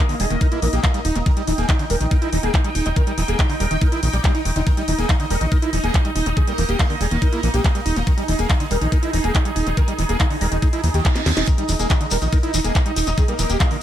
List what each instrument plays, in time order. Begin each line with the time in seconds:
Already playing: synth texture D#4 D#5
0.09 acid bass D3, supersaw synth A#3, open hi-hat
0.20 analog synth bass D#1, acid bass G3, supersaw synth G#4, open hi-hat
0.30 analog synth bass D#1, acid bass D#3, supersaw synth A#3, closed hi-hat
0.41 acid bass D#4, supersaw synth A#4, kick, closed hi-hat
0.52 supersaw synth A#3, acid bass E4, closed hi-hat
0.62 analog synth bass A#1, acid bass E3, supersaw synth A#3, open hi-hat
0.73 analog synth bass A#1, acid bass A#3, supersaw synth G4, closed hi-hat
0.84 acid bass E3, supersaw synth A#3, kick, clap, closed hi-hat
0.94 acid bass G3, supersaw synth A#3, closed hi-hat
1.05 analog synth bass D#1, acid bass D#4, open hi-hat
1.16 analog synth bass D#1, acid bass D#3, supersaw synth A#3, closed hi-hat
1.26 acid bass D#3, supersaw synth A#4, synth texture G5, kick, closed hi-hat
1.37 acid bass G3, supersaw synth D#4, closed hi-hat
1.47 analog synth bass D#1, acid bass E3, supersaw synth D#4, open hi-hat
1.58 analog synth bass D#1, acid bass A#3, supersaw synth G#4, closed hi-hat
1.69 acid bass D#3, supersaw synth D#4, kick, clap, closed hi-hat
1.79 acid bass D3, supersaw synth D#4, closed hi-hat
1.90 analog synth bass D#1, acid bass G3, supersaw synth A#4, open hi-hat
2.01 analog synth bass A#1, acid bass D#3, supersaw synth D#4, closed hi-hat
2.11 acid bass D#4, supersaw synth A#4, kick, closed hi-hat
2.22 supersaw synth D#4, acid bass E4, closed hi-hat
2.33 analog synth bass D#1, acid bass E3, supersaw synth D#4, open hi-hat
2.43 analog synth bass D#1, acid bass A#3, supersaw synth G#4, closed hi-hat
2.54 acid bass E3, supersaw synth D#4, kick, clap, closed hi-hat
2.64 acid bass G3, supersaw synth D#4, closed hi-hat
2.75 analog synth bass D#1, acid bass D#4, open hi-hat
2.86 analog synth bass D#1, acid bass D#3, supersaw synth D#4, closed hi-hat
2.96 acid bass D#3, supersaw synth A#4, kick, closed hi-hat
3.07 acid bass G3, supersaw synth D#4, closed hi-hat
3.18 analog synth bass D#1, acid bass E3, supersaw synth D#4, open hi-hat
3.28 analog synth bass D#1, acid bass A#3, supersaw synth G#4, closed hi-hat
3.39 acid bass D#3, supersaw synth D#4, kick, clap, closed hi-hat
3.50 acid bass D3, supersaw synth D#4, open hi-hat
3.60 analog synth bass D#1, acid bass G3, supersaw synth A#4, open hi-hat
3.71 analog synth bass D#1, acid bass D#3, supersaw synth D#4, closed hi-hat
3.81 acid bass D#4, supersaw synth A#4, kick, closed hi-hat
3.92 supersaw synth D#4, acid bass E4, closed hi-hat
4.03 analog synth bass A#1, acid bass D#3, supersaw synth D#4, open hi-hat
4.13 analog synth bass A#1, acid bass G3, supersaw synth D5, closed hi-hat
4.24 acid bass G3, supersaw synth D#4, kick, clap, closed hi-hat
4.35 supersaw synth D#4, acid bass D#4, closed hi-hat
4.45 analog synth bass D#1, acid bass D#3, open hi-hat
4.56 analog synth bass D#1, acid bass D3, supersaw synth D#4, closed hi-hat
4.67 acid bass D#3, supersaw synth A#4, synth texture D#5, kick, closed hi-hat
4.77 acid bass G3, supersaw synth D#4, closed hi-hat
4.88 analog synth bass D#1, acid bass E3, supersaw synth D#4, open hi-hat
4.99 analog synth bass D#1, acid bass A#3, supersaw synth G#4, closed hi-hat
5.09 acid bass D#3, supersaw synth D#4, kick, clap, closed hi-hat
5.20 acid bass D3, supersaw synth D#4, closed hi-hat
5.30 analog synth bass D#1, acid bass G3, supersaw synth A#4, open hi-hat
5.41 analog synth bass A#1, acid bass D#3, supersaw synth D#4, closed hi-hat
5.52 acid bass D#4, supersaw synth A#4, kick, closed hi-hat
5.62 supersaw synth D#4, acid bass E4, closed hi-hat
5.73 analog synth bass D#1, acid bass E3, supersaw synth D#4, open hi-hat
5.84 analog synth bass D#1, acid bass A#3, supersaw synth G#4, closed hi-hat
5.94 acid bass E3, supersaw synth D#4, kick, clap, closed hi-hat
6.05 acid bass G3, supersaw synth D#4, closed hi-hat
6.16 analog synth bass D#1, acid bass D#4, open hi-hat
6.26 analog synth bass D#1, acid bass D#3, supersaw synth D#4, closed hi-hat
6.37 acid bass D#3, supersaw synth G#4, kick, closed hi-hat
6.47 acid bass G3, supersaw synth A#3, closed hi-hat
6.58 analog synth bass D#1, acid bass E3, supersaw synth A#3, open hi-hat
6.69 analog synth bass D#1, acid bass A#3, supersaw synth G4, closed hi-hat
6.79 acid bass D#3, supersaw synth A#3, kick, clap, closed hi-hat
6.90 acid bass D3, supersaw synth A#3, open hi-hat
7.01 analog synth bass D#1, acid bass G3, supersaw synth G#4, open hi-hat
7.11 analog synth bass D#1, acid bass D#3, supersaw synth A#3, closed hi-hat
7.22 acid bass D#4, supersaw synth A#4, kick, closed hi-hat
7.33 supersaw synth A#3, acid bass E4, closed hi-hat
7.43 analog synth bass A#1, acid bass E3, supersaw synth A#3, open hi-hat
7.54 analog synth bass A#1, acid bass A#3, supersaw synth G4, closed hi-hat
7.64 acid bass E3, supersaw synth A#3, kick, clap, closed hi-hat
7.75 acid bass G3, supersaw synth A#3, closed hi-hat
7.86 analog synth bass D#1, acid bass D#4, open hi-hat
7.96 analog synth bass D#1, acid bass D#3, supersaw synth A#3, closed hi-hat
8.07 acid bass D#3, synth texture G#4, supersaw synth A#4, kick, closed hi-hat
8.18 acid bass G3, supersaw synth D#4, closed hi-hat
8.28 analog synth bass D#1, acid bass E3, supersaw synth D#4, open hi-hat
8.39 analog synth bass D#1, acid bass A#3, supersaw synth G#4, closed hi-hat
8.50 acid bass D#3, supersaw synth D#4, kick, clap, closed hi-hat
8.60 acid bass D3, supersaw synth D#4, closed hi-hat
8.71 analog synth bass D#1, acid bass G3, supersaw synth A#4, open hi-hat
8.81 analog synth bass A#1, acid bass D#3, supersaw synth D#4, closed hi-hat
8.92 acid bass D#4, supersaw synth A#4, kick, closed hi-hat
9.03 supersaw synth D#4, acid bass E4, closed hi-hat
9.13 analog synth bass D#1, acid bass E3, supersaw synth D#4, open hi-hat
9.24 analog synth bass D#1, acid bass A#3, supersaw synth G#4, closed hi-hat
9.35 acid bass E3, supersaw synth D#4, kick, clap, closed hi-hat
9.45 acid bass G3, supersaw synth D#4, closed hi-hat
9.56 analog synth bass D#1, acid bass D#4, open hi-hat
9.67 analog synth bass D#1, acid bass D#3, supersaw synth D#4, closed hi-hat
9.77 acid bass D#3, supersaw synth A#4, kick, closed hi-hat
9.88 acid bass G3, supersaw synth D#4, closed hi-hat
9.99 analog synth bass D#1, acid bass E3, supersaw synth D#4, open hi-hat
10.09 analog synth bass D#1, acid bass A#3, supersaw synth G#4, closed hi-hat
10.20 acid bass D#3, supersaw synth D#4, kick, clap, closed hi-hat
10.30 acid bass D3, supersaw synth D#4, open hi-hat
10.41 analog synth bass D#1, acid bass G3, supersaw synth A#4, open hi-hat
10.52 analog synth bass D#1, acid bass D#3, supersaw synth D#4, closed hi-hat
10.62 acid bass D#4, supersaw synth G#4, kick, closed hi-hat, reverse cymbal
10.73 supersaw synth D#4, acid bass E4, closed hi-hat
10.84 analog synth bass D#2, acid bass E3, supersaw synth D#4, open hi-hat
10.94 analog synth bass D#2, acid bass D#3, supersaw synth G4, closed hi-hat
11.05 acid bass D#3, supersaw synth D#4, kick, clap, closed hi-hat
11.16 acid bass A#3, supersaw synth D#4, snare, closed hi-hat
11.26 analog synth bass D#2, acid bass D3, snare, open hi-hat
11.37 analog synth bass D#1, acid bass D#4, supersaw synth D#4, snare, closed hi-hat
11.47 acid bass D#3, synth texture D#4 D#5, supersaw synth A#4, kick, closed hi-hat, shekere
11.58 acid bass G3, supersaw synth D#4, closed hi-hat
11.69 analog synth bass D#1, acid bass E3, supersaw synth D#4, open hi-hat, ride, shekere
11.79 analog synth bass D#1, acid bass A#3, supersaw synth G#4, closed hi-hat, shekere
11.90 acid bass D#3, supersaw synth D#4, kick, clap, closed hi-hat, shekere
12.01 acid bass D3, supersaw synth D#4, closed hi-hat
12.11 analog synth bass D#1, acid bass G3, supersaw synth A#4, open hi-hat, ride, shekere
12.21 analog synth bass A#1, acid bass D#3, supersaw synth D#4, closed hi-hat, shekere
12.33 acid bass D#4, supersaw synth A#4, kick, closed hi-hat, shekere
12.43 supersaw synth D#4, acid bass E4, closed hi-hat
12.54 analog synth bass D#1, acid bass E3, supersaw synth D#4, open hi-hat, ride, shekere
12.64 analog synth bass D#1, acid bass A#3, supersaw synth G#4, closed hi-hat, shekere
12.75 acid bass E3, supersaw synth D#4, kick, clap, closed hi-hat, shekere
12.86 acid bass G3, supersaw synth D#4, closed hi-hat
12.96 analog synth bass D#1, acid bass D#4, open hi-hat, ride, shekere
13.07 analog synth bass D#1, acid bass D#3, supersaw synth D#4, closed hi-hat, shekere
13.18 acid bass D#3, supersaw synth G#4, kick, closed hi-hat, shekere
13.28 acid bass G3, supersaw synth A#3, closed hi-hat
13.39 analog synth bass D#1, acid bass E3, supersaw synth A#3, open hi-hat, ride, shekere
13.50 analog synth bass D#1, acid bass A#3, supersaw synth G4, closed hi-hat, shekere
13.60 acid bass D#3, supersaw synth A#3, kick, clap, closed hi-hat, shekere
13.71 acid bass D3, supersaw synth A#3, open hi-hat